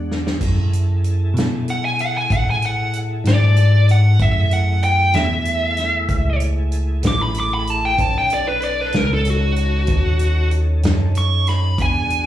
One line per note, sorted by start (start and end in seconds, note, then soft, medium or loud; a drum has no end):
0.00 0.38 E2 medium
0.00 0.37 G#3 soft
0.00 0.37 D4 medium
0.00 0.37 F#4 soft
0.11 snare soft
0.27 snare medium
0.41 1.33 F#2 medium
0.41 4.15 E4 soft
0.41 4.16 G#4 soft
0.41 4.16 A4 soft
0.41 kick medium
0.41 closed hi-hat medium
0.41 splash medium
0.73 closed hi-hat medium
1.04 closed hi-hat soft
1.34 2.26 B2 medium
1.34 closed hi-hat medium
1.39 snare medium
1.68 1.84 F#5 medium
1.68 closed hi-hat medium
1.85 1.99 G#5 medium
1.99 2.15 F#5 medium
1.99 closed hi-hat medium
2.17 2.31 G#5 medium
2.30 3.22 A2 medium
2.30 2.47 F#5 medium
2.30 kick loud
2.30 closed hi-hat medium
2.50 2.64 G#5 medium
2.62 2.94 F#5 medium
2.62 closed hi-hat soft
2.93 closed hi-hat medium
3.24 4.16 G#2 medium
3.24 3.87 D5 medium
3.24 snare medium
3.24 closed hi-hat medium
3.56 closed hi-hat medium
3.89 4.20 F#5 medium
3.89 closed hi-hat soft
4.19 5.11 F#2 medium
4.19 7.95 A3 medium
4.19 7.95 E4 medium
4.19 7.95 G#4 medium
4.19 4.51 E5 medium
4.19 kick medium
4.19 closed hi-hat medium
4.51 4.83 F#5 medium
4.51 closed hi-hat soft
4.83 5.14 G5 medium
4.83 closed hi-hat soft
5.14 6.06 E2 medium
5.14 6.37 E5 medium
5.14 snare medium
5.14 closed hi-hat medium
5.45 closed hi-hat medium
5.77 snare soft
5.77 closed hi-hat medium
6.09 7.01 C#2 medium
6.09 kick medium
6.09 closed hi-hat medium
6.40 closed hi-hat medium
6.72 closed hi-hat medium
7.03 7.95 A1 medium
7.03 snare loud
7.03 closed hi-hat medium
7.07 7.21 D6 medium
7.22 7.36 B5 medium
7.34 closed hi-hat medium
7.40 7.53 D6 medium
7.54 7.70 B5 medium
7.67 7.84 A5 medium
7.67 closed hi-hat soft
7.85 7.99 G5 medium
7.98 8.90 B1 medium
7.98 11.75 C#4 medium
7.98 11.74 D#4 medium
7.98 11.74 A4 medium
7.98 8.15 A5 medium
7.98 kick medium
7.98 closed hi-hat medium
8.18 8.31 G5 medium
8.30 8.47 D5 medium
8.30 closed hi-hat medium
8.48 8.62 B4 medium
8.62 8.81 D5 medium
8.62 closed hi-hat soft
8.81 8.97 B4 medium
8.93 9.86 C#2 medium
8.93 snare medium
8.93 closed hi-hat medium
8.97 9.10 A#4 medium
9.14 9.30 A4 medium
9.25 closed hi-hat medium
9.30 10.50 F#4 medium
9.56 closed hi-hat medium
9.87 10.80 D#2 medium
9.87 kick loud
9.87 closed hi-hat medium
10.19 closed hi-hat medium
10.51 closed hi-hat medium
10.83 11.75 F#2 medium
10.83 snare loud
10.83 closed hi-hat medium
11.15 11.47 C#6 medium
11.15 closed hi-hat medium
11.47 11.79 B5 medium
11.47 snare soft
11.47 closed hi-hat soft
11.78 12.26 E2 medium
11.78 12.26 D4 medium
11.78 12.26 F#4 medium
11.78 12.26 G#4 medium
11.78 12.26 G#5 medium
11.78 kick medium
11.78 closed hi-hat medium
12.10 closed hi-hat medium